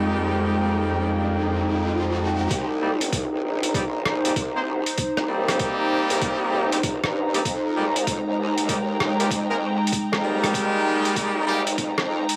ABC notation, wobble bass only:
X:1
M:4/4
L:1/16
Q:"Swing 16ths" 1/4=97
K:Cm
V:1 name="Wobble bass" clef=bass
F,,16 | C,,4 C,, C,, B,,,6 C,,3 z | z C,,4 z2 C,,3 B,,,3 G,,3 | F,,4 F,, F,, E,,6 F,,3 z |
z F,,4 z4 A,,,3 F,, F,,2 z |]